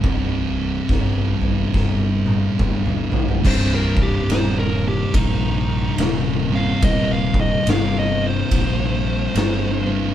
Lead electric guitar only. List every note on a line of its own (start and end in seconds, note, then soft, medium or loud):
3.47 3.73 C5 loud
3.75 4.01 A#4 medium
4.03 4.29 G4 medium
4.31 4.57 C5 loud
4.59 4.85 A#4 medium
4.88 5.14 G4 medium
5.15 5.96 D#4 loud
6.55 6.82 F5 medium
6.85 7.11 D#5 loud
7.13 7.39 F5 loud
7.41 7.67 D#5 loud
7.70 7.96 F5 loud
7.99 8.24 D#5 loud
8.27 9.90 C5 medium